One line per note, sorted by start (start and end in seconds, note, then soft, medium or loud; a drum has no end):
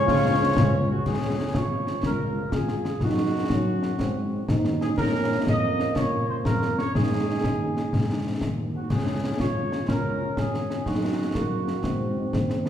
0.00 0.86 F3 medium
0.00 0.86 G#3 medium
0.00 0.86 C#4 medium
0.00 0.86 G#4 medium
0.00 0.90 C#5 medium
0.00 0.89 C#6 medium
0.07 0.52 C#2 medium
0.07 0.53 F4 loud
0.07 concert bass drum medium
0.07 snare medium
0.57 1.01 C#2 medium
0.57 1.03 C#4 medium
0.57 concert bass drum medium
0.57 snare medium
0.91 1.06 F#4 medium
1.06 1.47 C#2 medium
1.06 1.57 C#4 medium
1.06 1.55 G#4 medium
1.06 concert bass drum medium
1.06 snare soft
1.06 crash soft
1.23 1.29 F3 soft
1.23 1.29 G#3 soft
1.23 1.29 F4 soft
1.40 1.45 F3 soft
1.40 1.45 G#3 soft
1.40 1.46 F4 soft
1.55 1.96 G#1 soft
1.55 3.02 F4 medium
1.55 2.04 C#5 medium
1.55 concert bass drum medium
1.55 snare medium
1.72 1.78 F3 soft
1.72 1.78 G#3 soft
1.72 1.78 F4 soft
1.87 1.94 F3 soft
1.87 1.94 G#3 soft
1.87 1.95 F4 soft
1.87 snare soft
2.03 2.45 C#2 soft
2.03 2.50 A#4 medium
2.03 concert bass drum medium
2.03 snare medium
2.22 2.27 F3 soft
2.22 2.27 G#3 soft
2.22 2.27 F4 soft
2.38 2.43 F3 soft
2.38 2.43 G#3 soft
2.38 2.43 F4 soft
2.52 2.91 G#1 medium
2.52 3.02 G#4 medium
2.52 concert bass drum medium
2.52 snare medium
2.68 2.76 F3 soft
2.68 2.76 G#3 soft
2.68 2.76 F4 soft
2.68 snare soft
2.85 2.92 F3 soft
2.85 2.92 G#3 soft
2.85 2.92 F4 soft
2.85 snare soft
3.00 3.43 F#2 soft
3.00 3.53 D#4 medium
3.00 4.62 F#4 medium
3.00 concert bass drum medium
3.00 snare medium
3.19 3.25 F#3 soft
3.19 3.24 A#3 soft
3.19 3.25 D#4 soft
3.35 3.41 F#3 soft
3.35 3.41 A#3 soft
3.35 3.41 D#4 soft
3.50 3.92 F#2 medium
3.50 3.99 C#4 medium
3.50 concert bass drum medium
3.50 snare medium
3.68 3.74 F#3 soft
3.68 3.74 A#3 soft
3.68 3.74 D#4 soft
3.83 3.90 F#3 soft
3.83 3.90 A#3 soft
3.83 3.90 D#4 soft
3.83 snare soft
3.99 4.41 G#2 medium
3.99 4.45 C4 medium
3.99 concert bass drum medium
3.99 snare medium
4.16 4.22 F#3 soft
4.16 4.22 C4 soft
4.16 4.22 D#4 soft
4.33 4.39 F#3 soft
4.33 4.39 C4 soft
4.33 4.38 D#4 soft
4.48 4.90 D#2 medium
4.48 5.00 D#4 medium
4.48 concert bass drum medium
4.48 snare medium
4.65 4.72 F#3 soft
4.65 4.72 C4 soft
4.65 4.72 D#4 soft
4.65 snare soft
4.81 4.88 F#3 medium
4.81 4.88 C4 medium
4.81 4.88 D#4 medium
4.81 4.89 G#4 medium
4.81 snare soft
4.98 5.39 A#2 medium
4.98 5.46 C#4 medium
4.98 5.44 A#4 medium
4.98 concert bass drum medium
4.98 snare medium
4.98 crash soft
5.14 5.21 F3 medium
5.14 5.21 A#3 soft
5.14 5.20 C#4 soft
5.31 5.37 F3 medium
5.31 5.37 A#3 soft
5.31 5.37 C#4 medium
5.46 5.88 F2 medium
5.46 6.90 A#3 medium
5.46 5.93 D#5 medium
5.46 concert bass drum medium
5.46 snare medium
5.63 5.69 F3 soft
5.63 5.69 A#3 soft
5.63 5.69 C#4 soft
5.79 5.86 F3 soft
5.79 5.85 A#3 medium
5.79 5.85 C#4 medium
5.79 snare soft
5.96 6.37 A#2 medium
5.96 6.29 C#5 medium
5.96 concert bass drum medium
5.96 snare medium
6.13 6.19 F3 soft
6.13 6.19 A#3 soft
6.13 6.19 C#4 soft
6.28 6.35 F3 medium
6.28 6.36 A#3 soft
6.28 6.35 C#4 medium
6.28 6.36 C5 medium
6.45 6.87 F2 medium
6.45 6.76 A#4 medium
6.45 concert bass drum medium
6.45 snare medium
6.62 6.68 F3 soft
6.62 6.68 A#3 soft
6.62 6.68 C#4 soft
6.62 snare soft
6.78 6.84 F3 medium
6.78 6.84 A#3 soft
6.78 6.84 C#4 soft
6.78 6.93 C#5 medium
6.78 snare soft
6.95 7.36 G#2 soft
6.95 8.62 D#4 medium
6.95 8.38 G#4 medium
6.95 concert bass drum medium
6.95 snare medium
7.11 7.17 G#3 soft
7.11 7.17 C#4 soft
7.11 7.17 D#4 soft
7.27 7.33 G#3 soft
7.27 7.33 C#4 soft
7.27 7.33 D#4 soft
7.44 7.84 D#2 medium
7.44 concert bass drum medium
7.44 snare medium
7.59 7.65 G#3 soft
7.59 7.65 C#4 soft
7.59 7.65 D#4 soft
7.77 7.82 G#3 soft
7.77 7.82 C#4 soft
7.77 7.82 D#4 soft
7.77 snare soft
7.93 8.34 G#2 soft
7.93 concert bass drum medium
7.93 snare soft
8.09 8.15 G#3 soft
8.09 8.15 C4 soft
8.09 8.15 D#4 soft
8.26 8.32 G#3 soft
8.26 8.32 C4 soft
8.26 8.31 D#4 soft
8.41 8.79 D#2 soft
8.41 concert bass drum medium
8.41 snare medium
8.59 8.64 G#3 soft
8.59 8.64 C4 soft
8.59 8.65 D#4 soft
8.74 8.80 G#3 soft
8.74 8.80 C4 soft
8.74 8.80 D#4 soft
8.74 8.90 F#4 medium
8.90 9.32 C#2 soft
8.90 9.36 C#4 soft
8.90 9.40 G#4 medium
8.90 concert bass drum medium
8.90 snare soft
8.90 crash soft
9.06 9.13 G#3 soft
9.06 9.12 C#4 soft
9.06 9.13 F4 soft
9.24 9.30 G#3 soft
9.24 9.30 C#4 soft
9.24 9.29 F4 soft
9.40 9.81 G#1 soft
9.40 9.85 F4 soft
9.40 9.85 C#5 medium
9.40 concert bass drum medium
9.40 snare medium
9.56 9.62 G#3 soft
9.56 9.62 C#4 soft
9.56 9.62 F4 soft
9.72 9.78 G#3 soft
9.72 9.78 C#4 soft
9.72 9.78 F4 soft
9.72 snare soft
9.87 10.30 C#2 soft
9.87 10.82 C#4 medium
9.87 10.38 A#4 medium
9.87 concert bass drum medium
9.87 snare medium
10.05 10.11 G#3 soft
10.05 10.11 C#4 soft
10.05 10.11 F4 soft
10.20 10.27 G#3 soft
10.20 10.27 C#4 soft
10.20 10.27 F4 soft
10.37 10.79 G#1 soft
10.37 10.87 G#4 medium
10.37 concert bass drum medium
10.37 snare medium
10.54 10.60 G#3 soft
10.54 10.60 C#4 soft
10.54 10.60 F4 soft
10.54 snare soft
10.70 10.76 G#3 soft
10.70 10.76 C#4 soft
10.70 10.76 F4 soft
10.70 snare soft
10.86 11.27 F#2 soft
10.86 11.32 D#4 medium
10.86 12.46 F#4 medium
10.86 concert bass drum medium
10.86 snare medium
11.02 11.08 A#3 soft
11.02 11.08 D#4 soft
11.19 11.25 A#3 soft
11.19 11.25 D#4 soft
11.34 11.77 F#2 medium
11.34 11.86 A#3 medium
11.34 concert bass drum medium
11.34 snare medium
11.52 11.58 A#3 soft
11.52 11.58 D#4 soft
11.68 11.75 A#3 medium
11.68 11.74 D#4 soft
11.68 snare soft
11.84 12.25 G#2 medium
11.84 12.69 C4 medium
11.84 concert bass drum medium
11.84 snare medium
12.01 12.07 G#3 soft
12.01 12.07 C4 soft
12.01 12.07 D#4 soft
12.17 12.23 G#3 soft
12.17 12.23 C4 soft
12.17 12.23 D#4 soft
12.33 12.69 D#2 medium
12.33 concert bass drum medium
12.33 snare medium
12.50 12.56 G#3 soft
12.50 12.56 C4 soft
12.50 12.56 D#4 soft
12.50 snare soft
12.66 snare soft